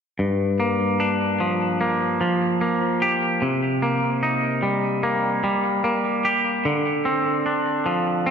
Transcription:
0.19 2.21 G2 soft
0.60 1.80 A#3 soft
1.00 3.02 D4 soft
1.40 2.20 F3 soft
1.81 2.60 A#3 soft
2.21 3.42 F3 soft
2.61 3.42 A#3 soft
3.02 3.42 G4 soft
3.42 5.44 C3 soft
3.82 5.02 A#3 soft
4.23 6.24 D#4 soft
4.63 5.43 G3 soft
5.03 5.83 A#3 soft
5.44 6.65 G3 soft
5.84 6.65 A#3 soft
6.25 6.65 G4 soft
6.65 8.31 D3 soft
7.05 8.25 C4 soft
7.46 8.31 D4 soft
7.86 8.31 F3 soft
8.26 8.31 C4 soft

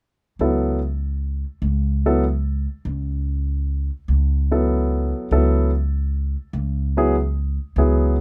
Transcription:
0.39 1.43 C#2 medium
0.39 0.78 F#3 soft
0.39 0.78 B3 soft
0.39 0.78 E4 soft
0.39 0.78 A4 medium
1.62 2.66 C#2 medium
2.06 2.23 F#3 soft
2.06 2.23 B3 soft
2.06 2.23 E4 soft
2.06 2.23 A4 medium
2.85 3.89 C#2 medium
4.08 5.12 C#2 medium
4.51 5.28 F#3 medium
4.51 5.28 B3 soft
4.51 5.28 E4 soft
4.51 5.28 A4 medium
5.31 6.34 C#2 medium
5.31 5.70 F#3 soft
5.31 5.70 B3 soft
5.31 5.70 E4 soft
5.31 5.70 A4 medium
6.53 7.57 C#2 medium
6.97 7.14 F#3 medium
6.97 7.14 B3 medium
6.97 7.14 E4 medium
6.97 7.14 G#4 medium
7.76 8.21 C#2 medium
7.76 8.15 F#3 medium
7.76 8.15 B3 medium
7.76 8.15 E4 soft
7.76 8.15 G#4 medium

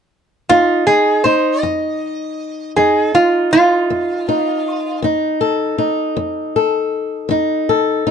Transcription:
0.49 1.17 F2 medium
0.49 0.87 D#4 medium
0.49 0.85 F4 medium
0.87 1.25 D#4 medium
0.87 1.23 G#4 medium
1.24 2.77 D#4 medium
1.24 1.61 C5 medium
1.61 2.30 F2 medium
1.61 2.71 D#5 medium
2.76 3.44 F2 medium
2.76 3.14 D#4 soft
2.76 3.13 G#4 medium
3.14 3.54 D#4 soft
3.14 3.51 F4 medium
3.53 4.28 D#4 soft
3.53 4.99 F4 medium
3.90 4.58 F2 medium
4.29 5.04 D#4 soft
5.02 5.71 F2 medium
5.02 5.78 D#4 medium
5.41 6.56 A4 medium
5.78 7.30 D#4 soft
6.17 6.85 F2 medium
6.56 7.68 A4 soft
7.29 7.98 F2 medium
7.29 8.05 D#4 medium
7.69 8.11 A4 medium
8.07 8.11 D#4 soft

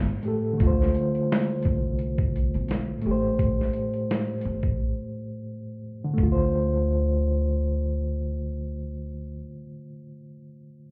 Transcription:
0.00 0.17 A2 medium
0.00 0.20 A3 medium
0.00 0.22 G4 medium
0.00 0.28 C5 medium
0.21 0.58 A2 soft
0.21 0.57 A3 soft
0.21 closed hi-hat medium
0.25 0.60 G4 soft
0.25 0.61 A4 medium
0.53 2.97 D3 medium
0.58 0.90 D2 medium
0.58 2.99 A3 medium
0.58 kick loud
0.58 closed hi-hat medium
0.62 3.01 F4 medium
0.67 3.04 C5 medium
0.82 snare soft
0.95 closed hi-hat medium
1.15 closed hi-hat soft
1.32 snare loud
1.32 closed hi-hat medium
1.63 2.50 C2 medium
1.63 kick medium
1.63 closed hi-hat medium
1.99 closed hi-hat medium
2.18 kick medium
2.36 closed hi-hat medium
2.54 2.84 B1 medium
2.54 closed hi-hat soft
2.68 snare medium
2.68 closed hi-hat medium
2.97 5.76 A2 medium
3.02 5.78 A3 medium
3.02 closed hi-hat medium
3.06 3.64 A1 medium
3.06 5.80 G4 medium
3.11 5.83 C5 medium
3.39 kick loud
3.39 closed hi-hat medium
3.61 snare soft
3.73 closed hi-hat medium
3.94 closed hi-hat soft
4.11 snare loud
4.11 closed hi-hat medium
4.41 4.78 A1 medium
4.41 closed hi-hat medium
4.63 kick medium
6.04 9.25 D3 medium
6.14 9.35 A3 medium
6.18 9.40 D2 medium
6.18 kick medium
6.23 9.44 F4 medium
6.32 9.53 C5 medium

